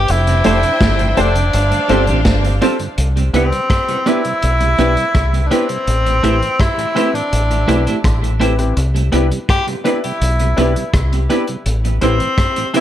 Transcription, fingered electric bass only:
0.09 F1
0.46 F1
0.81 G1
1.18 F1
1.54 G1
1.90 G1
2.09 A1
2.25 G1
2.98 C2
3.33 C2
4.43 B1
4.79 B1
5.15 C2
5.87 A1
6.24 A1
7.33 A1
7.69 B1
8.04 A1
8.77 C2
9.13 C2
10.21 B1
10.58 B1
10.94 C2
11.66 A1
12.02 A1

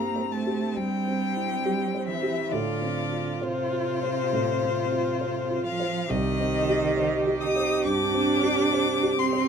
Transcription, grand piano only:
Already playing: G2 C4 E4 G4
0.16 C5
0.47 G4
0.77 G3
1.08 C4
1.37 E4
1.66 G4
1.95 C5
2.23 G4
2.53 A2
2.82 C4
3.12 F4
3.42 C5
3.72 F4
4.03 C5
4.33 A2
4.62 C4
4.92 F4
5.21 C5
5.51 F4
5.80 C5
6.10 C2
6.40 C4
6.69 G4
6.97 C5
7.27 G4
7.56 C5
7.85 G2
8.14 C4
8.43 G4
8.73 C5
9.03 G4
9.33 C5

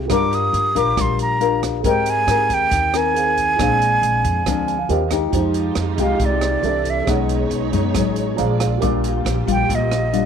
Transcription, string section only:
5.33 G#3 D#4 F4 G4
6.63 C4 E4 A4 D5
7.06 B3 D#4 G#4 C#5
8.38 A#3 F4 D5
8.81 A#3 G4

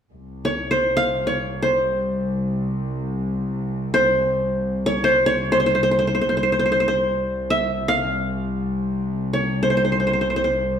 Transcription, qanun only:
0.45 C#5
0.71 C5
0.97 F5
1.27 C#5
1.62 C5
3.94 C5
4.86 C#5
5.04 C5
5.26 C#5
5.52 C5
5.60 C5
5.66 C5
5.75 C5
5.83 C5
5.91 C5
5.99 C5
6.07 C5
6.15 C5
6.21 C5
6.29 C5
6.37 C5
6.43 C5
6.52 C5
6.59 C5
6.66 C5
6.72 C5
6.80 C5
6.88 C5
7.50 E5
7.88 F5
9.33 C#5
9.63 C5
9.70 C5
9.77 C5
9.85 C5
9.92 C5
10.00 C5
10.07 C5
10.13 C5
10.21 C5
10.30 C5
10.36 C5
10.44 C5

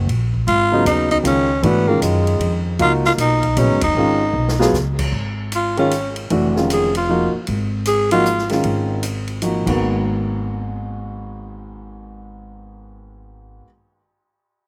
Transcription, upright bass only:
0.07 A#1
0.47 G#1
0.85 D#2
1.24 C#2
1.63 G#2
2.01 F#2
2.39 F2
2.79 C#2
3.18 B1
3.57 A#1
3.69 G#1
3.83 F1
3.95 G#1
4.33 B1
4.73 C#2
5.12 G#1
6.30 F1
7.33 muted upright bass stroke
7.48 G#1
8.64 G#1
9.66 G#1

